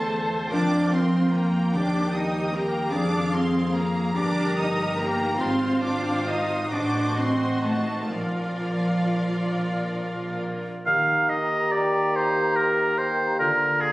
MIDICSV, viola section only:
0, 0, Header, 1, 2, 480
1, 0, Start_track
1, 0, Key_signature, -3, "major"
1, 0, Tempo, 807537
1, 309, Time_signature, 6, 3, 24, 8
1, 2226, Tempo, 833333
1, 3186, Tempo, 884956
1, 4146, Tempo, 920245
1, 6066, Tempo, 842697
1, 7810, End_track
2, 0, Start_track
2, 0, Title_t, "Viola section"
2, 0, Program_c, 0, 48
2, 0, Note_on_c, 0, 69, 54
2, 0, Note_on_c, 0, 72, 53
2, 290, Note_off_c, 0, 69, 0
2, 296, Note_off_c, 0, 72, 0
2, 310, Note_on_c, 0, 65, 56
2, 311, Note_on_c, 0, 70, 55
2, 1015, Note_off_c, 0, 65, 0
2, 1025, Note_off_c, 0, 70, 0
2, 1031, Note_on_c, 0, 67, 54
2, 1032, Note_on_c, 0, 70, 52
2, 1729, Note_off_c, 0, 70, 0
2, 1743, Note_off_c, 0, 67, 0
2, 1747, Note_on_c, 0, 68, 51
2, 2455, Note_off_c, 0, 68, 0
2, 2470, Note_on_c, 0, 67, 48
2, 2473, Note_on_c, 0, 70, 49
2, 3188, Note_off_c, 0, 67, 0
2, 3188, Note_on_c, 0, 65, 50
2, 3190, Note_off_c, 0, 70, 0
2, 3190, Note_on_c, 0, 72, 50
2, 3879, Note_off_c, 0, 65, 0
2, 3880, Note_off_c, 0, 72, 0
2, 3899, Note_on_c, 0, 66, 41
2, 3900, Note_on_c, 0, 72, 40
2, 4619, Note_off_c, 0, 72, 0
2, 4633, Note_off_c, 0, 66, 0
2, 4638, Note_on_c, 0, 70, 35
2, 4641, Note_on_c, 0, 65, 38
2, 5940, Note_off_c, 0, 70, 0
2, 5942, Note_off_c, 0, 65, 0
2, 7810, End_track
0, 0, End_of_file